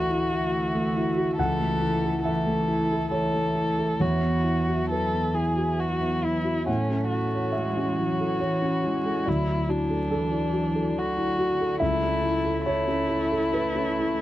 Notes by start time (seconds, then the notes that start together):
Already playing: D2 E3 A3 E4 F#4 A4 D5 E5
0.10 E4
0.74 A3
0.96 E4
1.17 F#4
1.37 C#2 E3 A3 E4 A4 F#5
1.59 A3
1.82 E4
2.04 A4
2.23 E3 A4 E5
2.46 A3
2.68 E4
2.91 A4
3.11 E3 A4 C#5
3.33 A3
3.55 E4
3.78 A4
3.99 E2 E3 F#3 F#4 C#5 E5
4.22 B3
4.43 E4
4.67 F#4
4.89 E3 A4 B4
5.12 B3
5.34 E4 G#4
5.56 F#4
5.79 F#4
6.01 B3
6.23 E4
6.44 F#4
6.66 A2 E3 A3 C#4 E4 C#5 F#5
6.90 C#4
7.11 E4 F#4
7.34 C#5
7.52 G#3 E5
7.77 C#4
7.98 F#3 E4
8.20 A4
8.40 E3 C#5
8.62 C#4
8.84 G#3 E4
9.05 A4
9.26 D2 F#3 E4 D5
9.48 E4
9.68 D4 F#4
9.89 A4
10.11 A4
10.15 E3
10.32 E4
10.53 F#4
10.74 A4
10.98 D3 F#4
11.16 E4
11.38 F#4
11.60 A4
11.80 C#2 A3 E4 C#5 E5
12.03 C#4
12.23 E4
12.44 A4
12.65 A3 E4 C#5
12.88 C#4
13.09 E4
13.31 A4
13.53 B4
13.75 C#4
13.99 E4